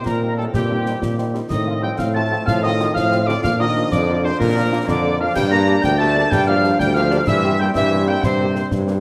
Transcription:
Already playing: trombone section D#3 C4
0.05 tuba A#2, euphonium A#2, trumpet section A#4, woodwind section A#4, piccolo A#5, concert bass drum, snare
0.23 french horn section G3 C4 D#4
0.37 euphonium A2, french horn section G3 C4 D#4, trumpet section A4, woodwind section A4, piccolo A5
0.53 euphonium G2, tuba A#2, woodwind section G4, trumpet section G4, piccolo G5, concert bass drum, snare
0.71 french horn section G3 C4 D#4
0.86 french horn section G3 C4 D#4, snare
1.01 tuba A#2, concert bass drum, snare
1.18 french horn section G3 C4 D#4, snare
1.34 french horn section G3 C4 D#4, snare
1.49 tuba A2, euphonium D#3, trombone section F3 C4, trumpet section D#5, woodwind section D#5, piccolo D#6, concert bass drum, snare, crash
1.67 french horn section F3 C4 F4
1.81 french horn section F3 C4 F4, euphonium G3, trumpet section G5, woodwind section G5, piccolo G6
1.97 tuba A2, euphonium F3, trumpet section F5, woodwind section F5, piccolo F6, concert bass drum, snare
2.14 french horn section F3 C4 F4, euphonium A3, trumpet section A5, woodwind section A5, piccolo A6
2.31 french horn section F3 C4 F4
2.46 tuba A2, euphonium F3, trumpet section F5, woodwind section F5, piccolo F6, concert bass drum, snare
2.62 euphonium D#3, french horn section F3 C4 F4, trumpet section D#5, woodwind section D#5, piccolo D#6
2.80 french horn section F3 C4 F4, snare
2.94 tuba A2, euphonium F3, trumpet section F5, woodwind section F5, piccolo F6, concert bass drum, snare
3.12 french horn section F3 C4 F4, snare
3.26 euphonium D3, french horn section F3 C4 F4, woodwind section D5, trumpet section D5, piccolo D6, snare
3.43 tuba A#2, euphonium F3, trombone section F3 D4, woodwind section F5, trumpet section F5, piccolo F6, concert bass drum, snare, crash
3.59 euphonium D#3, french horn section A#3 D4 F4, woodwind section D#5, trumpet section D#5, piccolo D#6
3.76 french horn section A#3 D4 F4
3.90 tuba F2, euphonium D3, woodwind section D5, trumpet section D5, piccolo D6, concert bass drum, snare
4.08 french horn section A#3 D4 F4
4.23 euphonium C3, french horn section A#3 D4 F4, woodwind section C5, trumpet section C5, piccolo C6
4.38 euphonium A#2, tuba A#2, woodwind section A#4, trumpet section A#4, piccolo A#5, concert bass drum, snare
4.56 french horn section A#3 D4 F4
4.72 french horn section A#3 D4 F4
4.87 tuba F2, euphonium D3, woodwind section D5, trumpet section D5, piccolo D6, concert bass drum, snare
5.03 french horn section A#3 D4 F4
5.19 euphonium F3, french horn section A#3 D4 F4, woodwind section F5, trumpet section F5, piccolo F6
5.35 tuba G2, euphonium G3, trombone section G3 D4, woodwind section G5, trumpet section G5, piccolo G6, concert bass drum, snare, crash
5.51 euphonium A#3, french horn section A#3 D4 G4, trumpet section A#5, woodwind section A#5, piccolo A#6
5.68 french horn section A#3 D4 G4
5.81 tuba D2, euphonium G3, trumpet section G5, woodwind section G5, piccolo G6, concert bass drum, snare
5.98 euphonium A3, french horn section A#3 D4 G4, woodwind section A5, trumpet section A5, piccolo A6
6.16 french horn section A#3 D4 G4
6.30 tuba G2, euphonium G3, woodwind section G5, trumpet section G5, piccolo G6, concert bass drum, snare
6.47 euphonium F3, french horn section A#3 D4 G4, trumpet section F5, woodwind section F5, piccolo F6
6.63 french horn section A#3 D4 G4, snare
6.79 tuba D2, euphonium G3, trumpet section G5, woodwind section G5, piccolo G6, concert bass drum, snare
6.94 euphonium F3, french horn section A#3 D4 G4, trumpet section F5, piccolo F6, snare
6.98 woodwind section F5
7.11 french horn section A#3 D4 G4, snare
7.27 tuba G2, euphonium E3, trombone section G3 C4, woodwind section E5, trumpet section E5, piccolo E6, concert bass drum, snare, crash
7.44 french horn section A#3 C4 G4
7.59 euphonium G3, french horn section A#3 C4 G4, trumpet section G5, woodwind section G5, piccolo G6
7.74 tuba G2, euphonium E3, trumpet section E5, woodwind section E5, piccolo E6, concert bass drum, snare
7.92 french horn section A#3 C4 G4
8.07 euphonium G3, french horn section A#3 C4 G4, trumpet section G5, woodwind section G5, piccolo G6
8.23 tuba G2, euphonium C3, trumpet section C5, woodwind section C5, piccolo C6, concert bass drum, snare
8.40 french horn section A#3 C4 G4
8.55 french horn section A#3 C4 G4, snare
8.71 tuba G2, concert bass drum, snare
8.87 french horn section A#3 C4 G4, snare

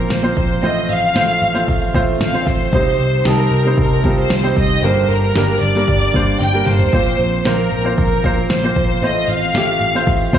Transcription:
Already playing: grand piano A#2 F3 A#3 C4 F4 C5, analog synth pad F3 A#3 C4
0.10 picked electric bass A#1, violin section C5, snare
0.23 grand piano A#3 C4 F4 C5
0.37 picked electric bass A#1, kick
0.62 picked electric bass A1, grand piano A2 A3 C4 F4 C5, analog synth pad A3, violin section D#5
0.89 picked electric bass A1, violin section F5
1.15 picked electric bass A1, grand piano A3 C4 F4 C5, snare
1.42 picked electric bass A1
1.54 grand piano A3 C4 F4 C5
1.68 picked electric bass A1, kick
1.94 picked electric bass A1, grand piano A3 C4 F4 C5, kick
2.21 picked electric bass A1, violin section F5, snare
2.34 grand piano A3 C4 F4 C5
2.47 picked electric bass A1, violin section C5, kick
2.72 picked electric bass C2, analog synth pad C3 D#4 G4, grand piano C3 G3 C4 D#4 C5, kick
2.99 picked electric bass C2
3.25 picked electric bass C2, grand piano G3 C4 D#4 A5, violin section A#4, snare
3.51 picked electric bass C2
3.65 grand piano G3 C4 D#4 C5
3.78 picked electric bass C2, violin section A#4, kick
4.04 picked electric bass C2, grand piano G3 C4 D#4 F4, kick
4.20 violin section C5
4.30 picked electric bass C2, snare
4.43 grand piano G3 C4 D#4 C5
4.57 picked electric bass C2, violin section D#5, kick
4.83 picked electric bass G1, grand piano G2 D3 G3 A#3 D4 A#4, analog synth pad A#3 D4, violin section C5
5.09 picked electric bass G1, violin section A#4
5.35 picked electric bass G1, grand piano G3 A#3 D4 A#4, snare
5.62 picked electric bass G1, violin section D5
5.75 grand piano G3 A#3 D4 A#4, snare
5.88 picked electric bass G1, kick
6.14 picked electric bass G1, grand piano G3 A#3 D4 C5, kick
6.40 picked electric bass G1, violin section G5, high tom
6.54 grand piano G3 A#3 D4 A#4
6.66 picked electric bass G1, violin section C5, mid tom
6.79 floor tom
6.93 picked electric bass A#1, grand piano A#2 F3 A#3 C4 F4 C5, analog synth pad C4 F4, kick
7.19 picked electric bass A#1
7.45 picked electric bass A#1, grand piano A#3 C4 F4 C5, violin section A#4, snare
7.72 picked electric bass A#1
7.84 grand piano A#3 C4 F4 C5
7.98 picked electric bass A#1, violin section A#4, kick
8.24 picked electric bass A#1, grand piano A#3 C4 F4 C5, kick
8.50 picked electric bass A#1, violin section C5, snare
8.64 grand piano A#3 C4 F4 C5
8.76 picked electric bass A#1, kick
9.02 picked electric bass A1, grand piano A2 A3 C4 F4 C5, analog synth pad A3 C4, violin section D#5
9.28 picked electric bass A1, violin section F5
9.55 picked electric bass A1, grand piano A3 C4 F4 G4, snare
9.81 picked electric bass A1
9.95 grand piano A3 C4 F4 C5
10.07 picked electric bass A1, kick
10.33 picked electric bass A1, grand piano A3 C4 F4 C5, kick

